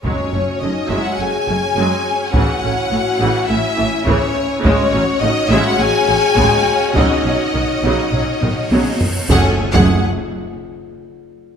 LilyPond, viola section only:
\new Staff \with { instrumentName = "Viola section" } { \clef bass \time 4/4 \key fis \dorian \tempo 4 = 104 <fis gis>8 <a cis'>8 <gis a>8 <fis gis>8 <a cis'>8 <gis a>8 <fis gis>8 r8 | <cis e>8 <a cis'>8 <e a>8 <cis e>8 <a cis'>8 <e a>8 <cis e>8 r8 | <cis gis>8 <fis cis'>8 <cis a>8 <cis gis>8 <fis cis'>8 <cis a>8 <cis gis>8 r8 | <cis fis>8 <fis cis'>8 <dis b>8 <cis fis>8 <fis cis'>8 <dis b>8 <cis fis>8 r8 |
<a gis'>16 r8 <a gis'>8 r2 r8. | }